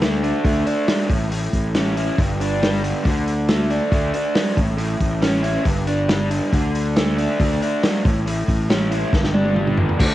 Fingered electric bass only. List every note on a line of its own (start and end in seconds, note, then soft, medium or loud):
0.00 0.31 D2 loud
0.45 0.63 D2 loud
1.10 1.46 A1 medium
1.53 2.09 A1 medium
2.18 2.92 G1 loud
3.06 3.79 D2 medium
3.92 4.10 D2 loud
4.58 4.94 A1 medium
5.01 5.56 A1 loud
5.66 6.39 G1 loud
6.53 7.26 D2 medium
7.40 7.58 D2 loud
8.05 8.41 A1 medium
8.48 9.03 A1 loud
9.13 9.86 G1 loud
10.00 10.09 D2 medium